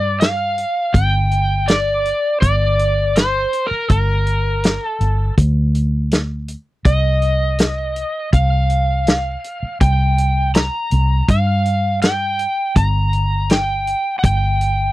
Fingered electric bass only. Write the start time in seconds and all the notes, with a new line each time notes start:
Already playing: G2
0.94 G1
2.42 G1
3.71 muted fingered electric bass stroke
3.90 G1
5.00 G1
5.38 D2
6.85 C2
8.33 C2
9.63 muted fingered electric bass stroke
9.81 C2
10.92 C2
11.29 G2
12.76 G1
14.24 G1